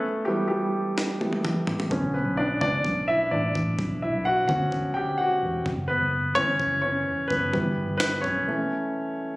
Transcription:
<<
  \new Staff \with { instrumentName = "Grand piano" } { \time 4/4 \key b \minor \tempo 4 = 128 <a a'>8 g'8 <g g'>4. r4. | r8 <b b'>8 <d' d''>8 <d' d''>4 <e' e''>8 <d' d''>8 r8 | r8 <e' e''>8 <fis' fis''>8 <fis' fis''>4 <g' g''>8 <fis' fis''>8 r8 | r8 <b b'>4 cis''4 <cis' cis''>4 <b b'>8~ |
<b b'>4 <b b'>8 <cis' cis''>2 r8 | }
  \new Staff \with { instrumentName = "Grand piano" } { \time 4/4 \key b \minor r8 <e g b>2 <e g b>8 r4 | <d b cis'>8 r2. r8 | r4. <d b cis'>8 r2 | r4. <e b cis'>4. r4 |
<e g b>8 r4. <e a cis'>2 | }
  \new Staff \with { instrumentName = "Fingered electric bass" } { \clef bass \time 4/4 \key b \minor r1 | b,,8. b,,8. cis,8 b,,4 a,,8 a,,8 | b,,8. b,,8. d,4 b,,4 e,,8 | fis,,8. fis,,8. g,,8 fis,,4 e,,8 fis,,8 |
g,,8. g,,8. b,,8 r2 | }
  \new DrumStaff \with { instrumentName = "Drums" } \drummode { \time 4/4 r4 r4 sn8 tommh16 tommh16 toml8 tomfh16 tomfh16 | bd4 r8 bd8 bd4 r8 bd8 | bd4 r8 bd8 bd4 r4 | bd4 r8 bd8 bd4 r8 bd8 |
bd4 sn8 bd8 r4 r4 | }
>>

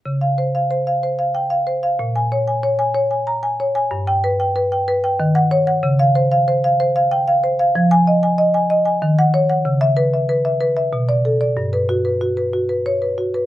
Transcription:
\new Staff \with { instrumentName = "Marimba" } { \time 3/4 \key des \lydian \tempo 4 = 94 << { r2 g''16 r8. | r2 bes''16 r8. | r16 g''8 r4. ges''8 r16 | r2 g''16 r8. |
r16 aes''8 r4. ges''8 r16 | r16 fes''8 r4. d''8 r16 | r2 des''16 r8. | } \\ { des16 f''16 c''16 f''16 c''16 f''16 c''16 f''8 f''16 c''16 f''16 | bes,16 aes''16 des''16 aes''16 des''16 aes''16 des''16 aes''8 aes''16 des''16 aes''16 | g,8 b'16 g''16 b'16 g''16 b'16 g''16 ees8 des''16 ges''16 | des16 f''16 c''16 f''16 c''16 f''16 c''16 f''8 f''16 c''16 f''16 |
f8 ees''16 aes''16 ees''16 aes''16 ees''16 aes''16 ees8 des''16 ges''16 | des8 ces''16 fes''16 ces''16 fes''16 ces''16 fes''16 ces8 a'16 d''16 | g,16 b'16 fis'16 b'16 fis'16 b'16 fis'16 b'8 b'16 fis'16 b'16 | } >> }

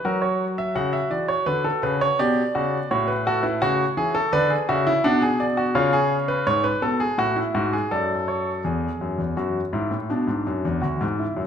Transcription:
<<
  \new Staff \with { instrumentName = "Grand piano" } { \time 4/4 \key b \minor \tempo 4 = 84 << { ais'16 cis''8 e''16 fis''16 e''16 d''16 cis''16 b'16 a'16 b'16 cis''16 d''4 | cis''16 b'16 a'16 b'16 cis''4 d''8 e''8 fis''8 d''8 | cis''4 cis''2 d''8 cis''8 | r1 | } \\ { fis'4 fis'2 g'8 fis'8 | fis'8 fis'16 e'16 fis'8 gis'16 a'16 b'16 gis'16 fis'16 e'16 d'16 gis'8 fis'16 | eis'16 gis'8 b'16 r16 b'16 a'16 gis'16 fis'16 e'16 fis'16 gis'16 a'4 | gis'4 fis'8 e'8 d'4 fis'8 e'8 | } >> }
  \new Staff \with { instrumentName = "Grand piano" } { \clef bass \time 4/4 \key b \minor fis4 cis8 e8 d8 cis8 b,8 cis8 | a,4 cis8 e8 d8 cis8 b,4 | cis4 gis,8 b,8 a,8 gis,8 fis,4 | e,8 fis,16 e,16 fis,8 gis,16 a,16 b,16 gis,16 fis,16 e,16 d,16 gis,8 fis,16 | }
>>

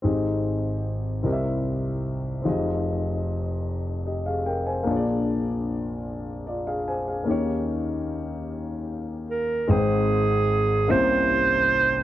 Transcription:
<<
  \new Staff \with { instrumentName = "Clarinet" } { \time 6/8 \key aes \major \tempo 4. = 50 r2. | r2. | r2. | r2 r8 bes'8 |
aes'4. c''4. | }
  \new Staff \with { instrumentName = "Grand piano" } { \time 6/8 \key aes \major << { r2. | r2 <g' ees''>16 <aes' f''>16 <bes' g''>16 <c'' aes''>16~ | <c'' aes''>16 r4. r16 <f' d''>16 <aes' f''>16 <c'' aes''>16 <aes' f''>16~ | <aes' f''>16 r2 r8. |
r2. | } \\ { <aes,, aes, c' ees' g' aes' ees''>4. <c, c c' e' g' bes' ees'' e''>4. | <f,, f, c' ees' f' aes' ees''>2. | <bes,, bes, bes d' f' aes' des'' d''>2. | <ees, ees bes des' ees' g' des''>2. |
<aes,, aes, aes c' ees' ces'' c'' g''>4. <c, c bes des' e' g' c''>4. | } >> }
>>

